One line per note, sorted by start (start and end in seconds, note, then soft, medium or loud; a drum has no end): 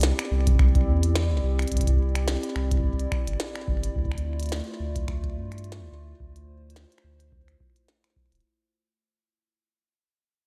0.00 0.13 C2 loud
0.00 3.92 C4 medium
0.00 8.40 E4 medium
0.00 3.92 G4 medium
0.00 6.16 D5 medium
0.00 snare loud
0.00 closed hi-hat medium
0.19 finger snap medium
0.19 closed hi-hat medium
0.31 0.89 C2 medium
0.47 kick loud
0.47 closed hi-hat medium
0.50 kick medium
0.55 kick medium
0.59 finger snap medium
0.59 kick loud
0.75 kick loud
0.75 closed hi-hat soft
0.87 1.33 E2 medium
1.03 closed hi-hat medium
1.16 finger snap medium
1.16 snare loud
1.31 1.40 C2 medium
1.44 1.66 C2 medium
1.59 finger snap medium
1.59 closed hi-hat soft
1.62 closed hi-hat soft
1.68 closed hi-hat soft
1.72 2.37 C2 medium
1.72 kick soft
1.72 closed hi-hat soft
1.75 kick soft
1.75 closed hi-hat medium
1.79 kick soft
1.79 closed hi-hat medium
1.83 kick medium
1.87 kick medium
1.87 closed hi-hat medium
1.90 kick medium
1.93 kick medium
1.97 kick medium
2.15 finger snap medium
2.15 closed hi-hat medium
2.28 snare loud
2.43 closed hi-hat medium
2.56 3.07 C2 medium
2.56 finger snap medium
2.71 kick loud
2.71 closed hi-hat medium
2.74 kick medium
2.80 kick medium
2.84 kick medium
2.89 kick soft
2.93 kick soft
3.00 closed hi-hat soft
3.12 finger snap medium
3.12 kick loud
3.27 3.37 G1 medium
3.27 closed hi-hat medium
3.40 snare loud
3.56 finger snap medium
3.68 3.90 G1 medium
3.68 kick loud
3.84 closed hi-hat medium
3.96 4.61 D2 loud
3.96 8.40 A3 medium
3.96 8.40 F4 medium
3.96 kick medium
4.05 kick medium
4.12 finger snap medium
4.12 kick medium
4.18 closed hi-hat medium
4.40 closed hi-hat medium
4.43 closed hi-hat soft
4.46 closed hi-hat soft
4.49 snare loud
4.49 closed hi-hat soft
4.56 closed hi-hat soft
4.60 closed hi-hat soft
4.64 closed hi-hat soft
4.80 5.38 D2 medium
4.96 kick loud
4.96 closed hi-hat medium
5.08 finger snap medium
5.08 kick loud
5.24 kick loud
5.24 closed hi-hat soft
5.36 5.81 G2 medium
5.52 finger snap soft
5.52 closed hi-hat medium
5.58 closed hi-hat soft
5.64 closed hi-hat soft
5.72 snare loud
5.72 closed hi-hat soft
5.80 5.89 D2 medium
5.92 6.14 D2 medium
6.20 6.86 D2 medium
6.20 8.42 C5 medium
6.20 kick medium
6.36 closed hi-hat soft
6.70 closed hi-hat medium
6.76 snare loud
6.92 closed hi-hat soft
6.98 finger snap medium
7.04 7.55 D2 medium
7.20 closed hi-hat medium
7.32 kick loud
7.48 finger snap soft
7.48 closed hi-hat soft
7.60 kick loud
7.76 closed hi-hat medium
7.88 snare loud
8.04 finger snap medium
8.04 closed hi-hat soft
8.16 kick loud
8.32 8.41 D1 loud
8.32 closed hi-hat medium
8.35 closed hi-hat soft
8.40 closed hi-hat soft